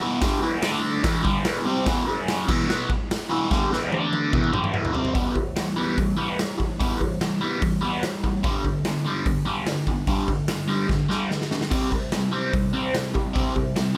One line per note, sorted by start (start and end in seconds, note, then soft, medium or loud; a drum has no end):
0.00 0.21 E2 medium
0.00 0.21 B2 loud
0.00 0.22 E3 loud
0.21 0.41 G2 loud
0.21 0.42 D3 loud
0.21 0.42 G3 loud
0.21 kick loud
0.21 snare loud
0.21 open hi-hat medium
0.41 0.62 E2 loud
0.41 0.62 B2 medium
0.41 0.62 E3 loud
0.62 1.03 D3 loud
0.62 1.03 A3 medium
0.62 1.03 D4 loud
0.62 snare loud
0.62 open hi-hat medium
1.03 1.23 E2 loud
1.03 1.23 B2 loud
1.03 1.24 E3 loud
1.03 kick loud
1.03 snare loud
1.03 open hi-hat medium
1.24 1.44 G2 loud
1.24 1.44 D3 loud
1.24 1.45 G3 loud
1.24 kick medium
1.44 1.65 E2 medium
1.44 1.65 B2 loud
1.44 1.65 E3 loud
1.44 snare loud
1.44 open hi-hat medium
1.65 1.85 C3 loud
1.65 1.86 G3 medium
1.65 1.86 C4 loud
1.85 2.06 E2 loud
1.85 2.06 B2 loud
1.85 2.07 E3 loud
1.85 kick loud
1.85 snare loud
1.85 open hi-hat medium
2.07 2.47 F#2 medium
2.07 2.47 C#3 medium
2.07 2.48 F#3 loud
2.28 snare loud
2.28 open hi-hat medium
2.47 2.67 E2 loud
2.47 2.67 B2 loud
2.47 2.68 E3 loud
2.47 kick loud
2.47 crash loud
2.68 2.88 B2 loud
2.68 2.88 F#3 loud
2.68 2.89 B3 loud
2.68 snare loud
2.90 muted overdriven electric guitar stroke medium
2.90 kick medium
3.11 snare loud
3.11 open hi-hat medium
3.30 3.50 E2 medium
3.30 3.50 B2 loud
3.30 3.51 E3 loud
3.51 3.70 G2 medium
3.51 3.71 D3 loud
3.51 3.71 G3 loud
3.51 kick loud
3.51 snare medium
3.71 3.91 E2 medium
3.71 3.91 B2 medium
3.71 3.93 E3 loud
3.71 snare medium
3.91 4.32 D3 loud
3.91 4.33 A3 medium
3.91 4.33 D4 loud
3.91 high tom medium
4.13 high tom medium
4.32 4.52 E2 loud
4.32 4.53 B2 loud
4.32 4.53 E3 loud
4.32 kick loud
4.32 mid tom medium
4.44 mid tom medium
4.53 4.72 G2 loud
4.53 4.73 D3 medium
4.53 4.74 G3 loud
4.53 mid tom loud
4.64 mid tom medium
4.72 4.93 E2 medium
4.72 4.92 B2 medium
4.72 4.94 E3 loud
4.72 mid tom medium
4.85 floor tom medium
4.93 5.13 C3 loud
4.93 5.13 G3 medium
4.93 5.14 C4 loud
4.93 floor tom medium
5.05 floor tom medium
5.13 5.34 E3 medium
5.13 5.34 G3 medium
5.13 5.34 B3 loud
5.13 kick loud
5.13 open hi-hat soft
5.35 5.54 E3 medium
5.35 5.54 G3 medium
5.35 kick medium
5.56 5.75 E3 medium
5.56 5.75 G3 medium
5.56 snare loud
5.56 open hi-hat medium
5.76 5.96 E3 medium
5.76 5.96 G3 medium
5.76 5.97 B3 medium
5.98 6.15 E3 medium
5.98 6.16 G3 medium
5.98 kick loud
5.98 open hi-hat medium
6.17 6.37 E3 loud
6.17 6.37 G3 loud
6.17 6.37 B3 loud
6.38 6.57 E3 medium
6.38 6.57 G3 medium
6.38 snare loud
6.38 open hi-hat medium
6.58 6.77 E3 medium
6.58 6.77 G3 medium
6.58 kick medium
6.79 6.99 E3 medium
6.79 6.99 G3 loud
6.79 7.00 B3 loud
6.79 kick loud
6.79 open hi-hat medium
7.01 7.19 E3 medium
7.01 7.19 G3 medium
7.01 kick medium
7.21 7.39 E3 medium
7.21 7.40 G3 medium
7.21 snare loud
7.21 open hi-hat medium
7.41 7.61 E3 medium
7.41 7.61 G3 medium
7.41 7.61 B3 medium
7.62 7.80 E3 medium
7.62 7.80 G3 medium
7.62 kick loud
7.62 open hi-hat medium
7.82 8.01 E3 loud
7.82 8.02 G3 loud
7.82 8.02 B3 loud
8.03 8.22 E3 medium
8.03 8.22 G3 medium
8.03 snare loud
8.03 open hi-hat medium
8.24 8.42 E3 medium
8.24 8.43 G3 medium
8.24 kick medium
8.43 8.63 G2 medium
8.43 8.64 D3 loud
8.43 8.64 G3 loud
8.43 kick loud
8.43 open hi-hat medium
8.65 8.83 G2 medium
8.65 8.83 D3 medium
8.65 kick medium
8.85 9.04 G2 medium
8.85 9.04 D3 medium
8.85 snare loud
8.85 open hi-hat medium
9.05 9.25 G2 medium
9.05 9.25 D3 medium
9.05 9.26 G3 loud
9.26 9.44 G2 medium
9.26 9.45 D3 medium
9.26 kick loud
9.26 open hi-hat soft
9.45 9.65 G2 loud
9.45 9.66 D3 medium
9.45 9.66 G3 loud
9.66 9.86 G2 medium
9.66 9.86 D3 medium
9.66 snare loud
9.66 open hi-hat medium
9.87 10.06 G2 medium
9.87 10.06 D3 medium
9.87 kick medium
10.07 10.26 G2 medium
10.07 10.27 D3 loud
10.07 10.28 G3 loud
10.07 kick loud
10.07 open hi-hat medium
10.28 10.46 G2 medium
10.28 10.47 D3 medium
10.28 kick medium
10.48 10.66 G2 medium
10.48 10.67 D3 medium
10.48 snare loud
10.48 open hi-hat medium
10.68 10.87 G2 medium
10.68 10.87 D3 medium
10.68 10.88 G3 medium
10.88 11.07 G2 medium
10.88 11.07 D3 medium
10.88 kick loud
10.88 snare medium
11.09 11.29 G2 medium
11.09 11.29 D3 loud
11.09 11.29 G3 loud
11.09 snare medium
11.30 11.49 G2 medium
11.30 11.49 D3 medium
11.30 snare medium
11.41 snare medium
11.51 11.70 G2 medium
11.51 11.70 D3 medium
11.51 snare medium
11.61 snare medium
11.71 11.90 C3 medium
11.71 11.91 G3 medium
11.71 11.91 C4 loud
11.71 kick loud
11.71 open hi-hat medium
11.71 crash medium
11.91 12.10 C3 medium
11.91 12.10 G3 medium
11.91 kick medium
12.12 12.30 C3 medium
12.12 12.31 G3 medium
12.12 snare loud
12.12 open hi-hat medium
12.32 12.51 C3 medium
12.32 12.52 G3 medium
12.32 12.52 C4 loud
12.53 12.72 C3 medium
12.53 12.72 G3 medium
12.53 kick loud
12.53 open hi-hat medium
12.73 12.93 C3 medium
12.73 12.93 G3 loud
12.73 12.93 C4 loud
12.94 13.13 C3 medium
12.94 13.13 G3 medium
12.94 snare loud
12.94 open hi-hat medium
13.14 13.32 C3 medium
13.14 13.33 G3 medium
13.14 kick medium
13.34 13.54 C3 loud
13.34 13.54 G3 loud
13.34 13.54 C4 loud
13.34 kick loud
13.34 open hi-hat medium
13.55 13.74 C3 medium
13.55 13.74 G3 medium
13.55 kick medium
13.76 13.94 C3 medium
13.76 13.94 G3 medium
13.76 snare loud
13.76 open hi-hat medium